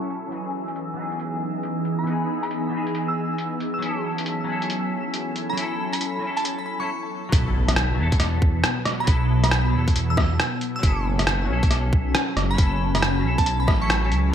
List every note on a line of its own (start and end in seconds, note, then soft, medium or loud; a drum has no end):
0.00 0.32 F#3 medium
0.00 0.28 F#3 medium
0.00 1.61 C#4 medium
0.00 0.30 C#4 medium
0.00 0.32 E4 medium
0.00 0.30 E4 medium
0.00 0.31 A4 medium
0.00 6.90 E6 medium
0.10 closed hi-hat soft
0.28 0.93 E3 medium
0.28 0.95 B3 medium
0.32 3.83 E3 medium
0.32 0.97 D#4 medium
0.32 0.98 G#4 medium
0.32 closed hi-hat soft
0.50 5.26 B3 medium
0.50 3.83 D#4 medium
0.66 3.83 G#4 medium
0.66 closed hi-hat soft
0.76 closed hi-hat soft
0.94 2.02 E3 medium
0.94 2.05 B3 medium
0.99 2.06 D#4 medium
0.99 2.07 G#4 medium
1.12 closed hi-hat soft
1.20 closed hi-hat medium
1.63 closed hi-hat soft
1.85 closed hi-hat soft
1.99 2.22 B5 medium
2.03 2.68 E3 medium
2.03 2.70 B3 medium
2.03 closed hi-hat soft
2.09 2.72 D#4 medium
2.09 2.73 G#4 medium
2.43 2.87 B5 medium
2.43 closed hi-hat soft
2.51 closed hi-hat soft
2.69 3.78 E3 medium
2.69 3.80 B3 medium
2.74 3.81 D#4 medium
2.74 3.83 G#4 medium
2.87 closed hi-hat soft
2.95 closed hi-hat medium
3.08 3.31 E6 medium
3.38 closed hi-hat soft
3.60 closed hi-hat soft
3.74 3.88 E6 medium
3.78 4.43 F#3 medium
3.78 6.89 F#3 medium
3.78 4.45 C#4 medium
3.78 closed hi-hat soft
3.84 6.89 C#4 medium
3.84 4.47 E4 medium
3.84 4.48 A4 medium
4.18 closed hi-hat soft
4.26 closed hi-hat soft
4.40 5.52 F#3 medium
4.40 6.89 E4 medium
4.47 5.54 C#4 medium
4.47 5.56 E4 medium
4.52 5.58 A4 medium
4.62 closed hi-hat soft
4.68 6.89 A4 medium
4.68 closed hi-hat medium
5.14 closed hi-hat soft
5.36 closed hi-hat soft
5.50 6.18 F#3 medium
5.50 5.72 B5 medium
5.56 6.20 C#4 medium
5.56 6.22 E4 medium
5.56 closed hi-hat soft
5.61 6.23 A4 loud
5.93 6.37 B5 medium
5.93 closed hi-hat medium
6.01 closed hi-hat medium
6.19 6.76 F#3 medium
6.19 6.77 C#4 medium
6.24 6.79 E4 medium
6.24 6.80 A4 medium
6.37 6.42 A5 medium
6.37 closed hi-hat soft
6.44 6.54 A5 medium
6.44 closed hi-hat medium
6.59 6.64 B5 medium
6.66 6.76 B5 medium
6.79 6.88 F#3 medium
6.79 6.89 C#4 medium
6.79 6.89 E4 medium
6.79 6.88 C#6 medium
6.83 6.90 A4 medium
7.29 8.00 B1 loud
7.29 10.83 B2 medium
7.29 7.93 F#3 medium
7.29 7.96 B3 medium
7.29 kick loud
7.29 impact medium
7.33 7.97 E4 medium
7.33 7.99 A4 medium
7.33 closed hi-hat medium
7.49 12.26 B3 medium
7.68 cross-stick medium
7.68 closed hi-hat medium
7.76 cross-stick loud
7.76 closed hi-hat medium
7.95 8.63 E2 medium
7.95 9.03 F#3 medium
7.95 9.05 B3 medium
8.00 9.07 E4 medium
8.00 9.08 A4 loud
8.12 kick loud
8.12 closed hi-hat soft
8.20 cross-stick soft
8.20 closed hi-hat medium
8.42 kick loud
8.64 cross-stick loud
8.64 closed hi-hat medium
8.85 cross-stick medium
8.85 closed hi-hat soft
9.00 9.68 F#3 medium
9.00 9.23 B5 medium
9.06 9.75 B1 loud
9.06 9.71 B3 medium
9.06 9.72 E4 medium
9.06 kick loud
9.06 closed hi-hat medium
9.12 9.74 A4 loud
9.44 9.88 B5 medium
9.44 cross-stick medium
9.44 closed hi-hat medium
9.51 cross-stick loud
9.51 closed hi-hat medium
9.70 10.78 F#3 medium
9.70 10.81 B3 medium
9.74 10.38 E2 medium
9.74 10.82 E4 medium
9.74 10.83 A4 medium
9.88 kick loud
9.88 closed hi-hat soft
9.96 closed hi-hat medium
10.10 10.33 E6 medium
10.17 kick loud
10.17 cross-stick medium
10.40 cross-stick loud
10.40 closed hi-hat medium
10.61 closed hi-hat soft
10.76 11.44 F#3 medium
10.76 10.89 E6 medium
10.82 11.51 F#1 loud
10.82 14.34 F#3 medium
10.82 11.46 C#4 medium
10.82 11.48 E4 medium
10.82 kick loud
10.82 closed hi-hat medium
10.87 11.49 A4 medium
11.01 14.35 C#4 medium
11.19 cross-stick medium
11.19 closed hi-hat medium
11.27 cross-stick loud
11.27 closed hi-hat medium
11.45 12.53 F#3 medium
11.45 12.56 C#4 medium
11.49 12.14 B1 loud
11.49 12.57 E4 medium
11.49 12.59 A4 loud
11.63 kick loud
11.63 closed hi-hat soft
11.71 cross-stick soft
11.71 closed hi-hat medium
11.93 kick loud
12.15 cross-stick loud
12.15 closed hi-hat medium
12.37 12.57 F#1 medium
12.37 cross-stick medium
12.37 closed hi-hat soft
12.51 13.18 F#3 loud
12.51 12.73 B5 medium
12.57 13.25 F#1 loud
12.57 13.21 C#4 medium
12.57 13.23 E4 medium
12.57 kick loud
12.57 closed hi-hat medium
12.62 13.24 A4 loud
12.95 13.38 B5 medium
12.95 cross-stick soft
12.95 closed hi-hat medium
13.02 cross-stick loud
13.02 closed hi-hat medium
13.20 13.77 F#3 medium
13.20 13.78 C#4 medium
13.24 13.68 B1 medium
13.24 13.79 E4 medium
13.24 13.81 A4 medium
13.38 13.43 A5 medium
13.38 kick loud
13.38 closed hi-hat soft
13.46 13.55 A5 medium
13.46 closed hi-hat medium
13.60 13.65 B5 medium
13.67 14.13 A1 medium
13.67 13.77 B5 medium
13.67 kick loud
13.67 cross-stick medium
13.80 13.99 F#3 medium
13.80 14.00 C#4 medium
13.80 14.01 E4 medium
13.80 14.01 A4 medium
13.80 14.11 C#6 medium
13.90 cross-stick loud
13.90 closed hi-hat medium
14.02 14.29 F#3 medium
14.02 14.31 C#4 medium
14.02 14.32 E4 medium
14.02 14.33 A4 medium
14.12 14.32 C#2 medium
14.12 closed hi-hat soft
14.29 14.35 E3 medium